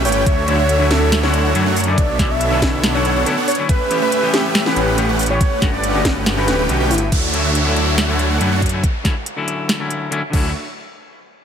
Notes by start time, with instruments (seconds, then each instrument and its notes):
0.05 detuned saw bass G1, supersaw synth A3 C#4 G4 B4 G5, soft synth lead C#5, closed hi-hat, open hi-hat
0.12 closed hi-hat
0.26 detuned saw bass D2, supersaw synth A3 D4 F#4 C#5 E5, soft synth lead C#5, kick, closed hi-hat
0.47 clean electric guitar D3 F#3 A3 C#4 E4, closed hi-hat
0.59 supersaw synth A3 D4 F#4 C#5 E5, soft synth lead C#5
0.69 closed hi-hat
0.79 clean electric guitar D3 F#3 A3 C#4 E4
0.91 supersaw synth A3 D4 F#4 C#5 E5, soft synth lead A4, snare, closed hi-hat
1.12 snare, closed hi-hat
1.22 clean electric guitar D3 F#3 A3 C#4 E4, supersaw synth A3 D4 F#4 C#5 F#5, soft synth lead C#5, snare
1.34 closed hi-hat
1.45 supersaw synth A3 D4 F#4 C#5 F#5
1.54 detuned saw bass F#2, clean electric guitar D3 F#3 A3 C#4 E4, closed hi-hat
1.66 supersaw synth A3 D4 F#4 C#5 F#5
1.76 closed hi-hat, open hi-hat
1.84 clean electric guitar D3 F#3 A3, soft synth lead D5, closed hi-hat
1.88 clean electric guitar C#4 E4
1.98 detuned saw bass B1, supersaw synth B3 D4 A4 C#5 E5, kick, closed hi-hat
2.18 clean electric guitar D3 F#3 A3 C#4 E4, kick, snare, closed hi-hat
2.30 supersaw synth B3 D4 A4 C#5 E5, soft synth lead E5
2.41 closed hi-hat
2.51 clean electric guitar D3 F#3 A3 C#4 E4
2.62 supersaw synth B3 D4 A4 C#5 E5, kick, snare, closed hi-hat
2.84 snare, closed hi-hat
2.94 clean electric guitar D3 F#3 A3 C#4 E4, supersaw synth B3 D4 A4 C#5 F#5, soft synth lead C#5
3.05 closed hi-hat
3.16 supersaw synth B3 D4 A4 C#5 F#5
3.25 clean electric guitar D3 F#3 A3 C#4 E4, closed hi-hat
3.37 supersaw synth B3 D4 A4 C#5 F#5
3.48 soft synth lead C#5, closed hi-hat, open hi-hat
3.55 clean electric guitar D3 F#3 A3, closed hi-hat
3.59 clean electric guitar C#4 E4
3.69 supersaw synth A3 C#4 G4 B4 E5, soft synth lead B4, kick, closed hi-hat
3.90 clean electric guitar E3 A3 B3 C#4 G4, closed hi-hat
4.02 supersaw synth A3 C#4 G4 B4 E5, soft synth lead B4
4.12 closed hi-hat
4.22 clean electric guitar E3 A3 B3 C#4 G4
4.33 supersaw synth A3 C#4 G4 B4 E5, soft synth lead G4, snare, closed hi-hat
4.55 snare, closed hi-hat
4.65 clean electric guitar E3 A3 B3 C#4 G4, supersaw synth A3 C#4 G4 B4 F#5, soft synth lead B4, snare
4.76 detuned saw bass A1, closed hi-hat
4.87 supersaw synth A3 C#4 G4 B4 F#5
4.97 clean electric guitar E3 A3 B3 C#4 G4, closed hi-hat
5.09 supersaw synth A3 C#4 G4 B4 F#5
5.19 closed hi-hat, open hi-hat
5.26 clean electric guitar E3 A3, closed hi-hat
5.30 clean electric guitar B3 C#4 G4, soft synth lead C#5
5.41 supersaw synth A3 C#4 G4 B4 F#5, kick, closed hi-hat
5.61 detuned saw bass G1, clean electric guitar D3 A3 B3 C#4 F#4, kick, snare, closed hi-hat
5.73 supersaw synth A3 C#4 G4 B4 F#5, soft synth lead D5
5.84 closed hi-hat
5.94 clean electric guitar D3 A3 B3 C#4 F#4
6.05 detuned saw bass G1, supersaw synth A3 C#4 G4 B4 F#5, kick, snare, closed hi-hat
6.26 snare, closed hi-hat
6.36 clean electric guitar D3 A3 B3 C#4 F#4, supersaw synth A3 C#4 G4 B4 G5, soft synth lead B4
6.48 detuned saw bass D1, snare, closed hi-hat
6.59 supersaw synth A3 C#4 G4 B4 G5
6.68 detuned saw bass B1, clean electric guitar D3 A3 B3 C#4 F#4, closed hi-hat
6.80 supersaw synth A3 C#4 G4 B4 G5
6.90 detuned saw bass G1, soft synth lead E4, closed hi-hat, open hi-hat
6.98 closed hi-hat
7.12 detuned saw bass D2, supersaw synth A3 D4 F#4 C#5 E5, kick, closed hi-hat, crash, downlifter
7.32 clean electric guitar D3 F#3 A3 C#4 E4, closed hi-hat
7.44 supersaw synth A3 D4 F#4 C#5 E5
7.55 closed hi-hat
7.65 clean electric guitar D3 F#3 A3 C#4 E4
7.76 supersaw synth A3 D4 F#4 C#5 E5, closed hi-hat
7.98 snare, closed hi-hat
8.08 clean electric guitar D3 F#3 A3 C#4 E4, supersaw synth A3 D4 F#4 C#5 F#5
8.19 closed hi-hat
8.30 supersaw synth A3 D4 F#4 C#5 F#5
8.40 detuned saw bass F#2, clean electric guitar D3 F#3 A3 C#4 E4, closed hi-hat
8.52 supersaw synth A3 D4 F#4 C#5 F#5
8.62 kick, closed hi-hat
8.66 closed hi-hat
8.69 clean electric guitar D3 F#3 A3, closed hi-hat
8.73 clean electric guitar C#4 E4
8.83 kick, closed hi-hat
9.04 clean electric guitar D3 F#3 A3 C#4 E4, kick, snare, closed hi-hat
9.26 closed hi-hat
9.36 clean electric guitar D3 F#3 A3 C#4 E4
9.48 closed hi-hat
9.69 snare, closed hi-hat
9.79 clean electric guitar D3 F#3 A3 C#4 E4
9.90 closed hi-hat
10.11 clean electric guitar D3 F#3 A3 C#4 E4, closed hi-hat
10.30 detuned saw bass D2, clean electric guitar D3 F#3 A3, supersaw synth A3 D4 F#4 C#5 E5, kick, crash
10.35 clean electric guitar C#4 E4